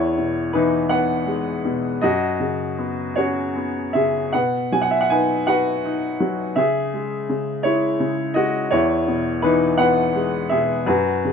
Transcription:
upright piano
Already playing: E2 E4 C#5
0.17 B2
0.53 E3 D#4 B4
0.89 B3 B4 F#5
1.26 G#3
1.65 B2
2.01 F#2 F#4 D#5
2.40 C#3
2.78 B3
3.16 C#4 F#4 C#5
3.56 B3
3.93 C#3 G#4 E5
4.33 B2 B4 F#5
4.72 F#3 G#5
4.82 F#5
4.91 E5
5.01 F#5
5.10 D#4 B4 G#5
5.47 F#4 B4 F#5
5.85 D#4
6.20 F#3
6.56 C#3 G#4 E5
6.94 G#3
7.29 C#3
7.63 G#3 E4 C#5
8.00 C#3
8.34 G#3 F#4 D#5
8.71 E2 E4 C#5
9.08 B2
9.42 E3 D#4 B4
9.78 B3 B4 F#5
10.15 G#3
10.49 B2 G#4 E5
10.86 F#2 F#4 B4
11.25 C#3

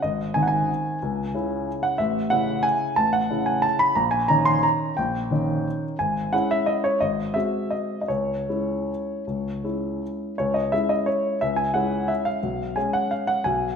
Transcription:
grand piano
0.02 G#1 D#5
0.34 D#3 C4 D#4 G#5
0.42 F#5
0.48 G#5
1.02 C#2
1.34 C#3 C#4 E4
1.83 F#5
1.98 A1 E5
2.30 C#3 C#4 E4 F#5
2.63 G#5
2.96 A1 A5
3.13 F#5
3.30 C#3 C#4 E4
3.46 G#5
3.62 A5
3.79 B5
3.95 A#1 A#5
4.11 G#5
4.28 D#3 C#4 D#4 A#5
4.45 C6
4.63 A#5
4.97 A#1 G5
5.31 D#3 C#4 D#4
5.99 G#1 G#5
6.33 G#3 C#4 E4 F#5
6.51 E5
6.66 D#5
6.84 C#5
7.01 G#1 D#5
7.34 G#3 C4 F#4 E5
7.71 D#5
8.01 D#5
8.08 C#2 C#5
8.49 G#3 C#4 E4
9.27 C#2
9.64 G#3 C#4 E4
10.38 C#2 C#5
10.54 D#5
10.72 G#3 C#4 E4 E5
10.89 D#5
11.06 C#5
11.41 C#2 E5
11.56 G#5
11.74 G#3 C#4 E4 F#5
12.08 E5
12.25 F5
12.43 B1
12.76 G#3 C#4 G#5
12.93 F#5
13.11 F5
13.27 F#5
13.44 B1 G#5

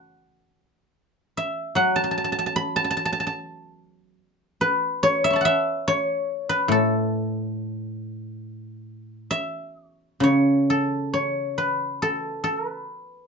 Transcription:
guzheng
Already playing: E5 F#5 A5 B5 C#6
1.37 E5
1.75 F#3 F#5
1.96 A5
2.04 A5
2.11 A5
2.18 A5
2.24 A5
2.32 A5
2.39 A5
2.46 A5
2.56 B5
2.76 A5
2.84 A5
2.91 A5
2.97 A5
3.05 A5
3.13 A5
3.20 A5
3.27 A5
4.61 B4
5.03 C#5
5.24 E5
5.30 B5 C#6
5.36 A5
5.41 F#5
5.45 E5
5.88 C#5
6.49 B4
6.68 A2 A4
9.31 E5
9.90 C#5
10.20 C#3 C#5
10.70 A4
11.14 C#5
11.58 B4
12.02 A4
12.44 A4
12.68 B4

